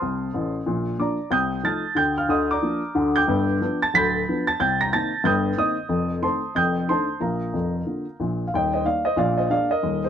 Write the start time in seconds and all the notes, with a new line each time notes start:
Already playing: C5 A5 C6
0.02 C2 C3
0.33 A1 A2
0.66 A#1 A#2
0.98 F3 A#3 D4 D5 A#5 D6
1.31 C2 C3 G5 D#6 G6
1.63 F3 A3 D#4 A5 F6 A6
1.95 D2 D3 G5 G6
2.18 F5 F6
2.28 D2 D3 D#5 D#6
2.51 D5 A#5 D6
2.62 F3 A#3 D4
2.95 D2 D3
3.16 G5 D6 G6
3.27 G1 G2
3.60 F3 B3 D4
3.82 A5 A6
3.94 D1 D2 B5 G6 B6
4.29 F3 B3 D4
4.47 A5 A6
4.60 C2 C3 G5 G6
4.81 A#5 A#6
4.92 D#3 A#3 C4 A5 A6
5.24 G1 G2 G5 D#6 G6
5.58 D#3 A#3 C4 D#5 D#6
5.89 F1 F2
6.22 D#3 A3 C4 C5 A5 C6
6.55 F1 F2 G5 D#6 G6
6.88 D#3 A3 D4 C5 A5 C6
7.20 A#1 A#2 A#4 F5 A#5
7.53 F1 F2
7.86 D3 A#3 F4
8.20 A#1 A#2
8.48 F5
8.54 D#1 D#2 D#5 G5
8.74 C5 D#5
8.85 D#3 A#3 D#4 D5 F5
9.05 C5 D#5
9.17 A#1 A#2 D5 F5
9.37 C5 D#5
9.50 G#3 A#3 D4 D5 F5
9.71 A#4 D#5
9.83 D#1 D#2
10.04 G#4 C5